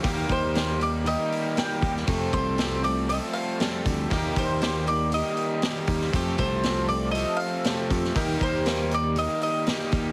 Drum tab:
HH |o-o-o-o-o-o-o-o-|o-o-o-o-o-o-o-o-|o-o-o-o-o-o-o-o-|o-o-o-o-o-o-o-o-|
SD |----o-------o--o|----o-------o---|----o-------o--o|----o-------o--o|
BD |o-o-----------o-|o-o-----------o-|o-o-----------o-|o-o-----------o-|

HH |o-o-o-o-o-o-o-o-|
SD |----o-------o---|
BD |o-o-----------o-|